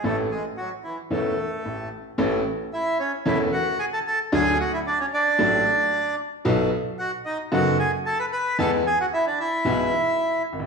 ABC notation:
X:1
M:4/4
L:1/16
Q:1/4=112
K:A
V:1 name="Bandoneon"
[A,A]2 [G,G]2 [F,F]2 [E,E]2 [A,A]6 z2 | z4 [Ee]2 [Cc]2 [Ee]2 [Ff]2 [Gg] [Aa] [Aa]2 | [Gg]2 [Ff] [Ee] [Dd] [Cc] [Dd]8 z2 | z4 [Ff]2 [^D^d]2 [Ff]2 [Gg]2 [Aa] [Bb] [Bb]2 |
[Aa]2 [Gg] [Ff] [Ee] [Dd] [Ee]8 z2 |]
V:2 name="Upright piano" clef=bass
[A,,,A,,E,A,CA]2 z6 [E,,,E,,E,A,CA]2 z2 [A,,,A,,]2 z2 | [A,,,A,,E,A,CA]2 z6 [E,,,E,,E,A,CA]2 z6 | [D,,D,F,A,DA]2 z6 [A,,,A,,F,A,DA]2 z6 | [B,,,B,,F,B,^DA]2 z6 [F,,,F,,F,B,DA]2 z6 |
[E,,E,G,B,G]2 z6 [B,,,B,,E,G,B,G]2 z4 z/2 G,,,/2 A,,,/2 z/2 |]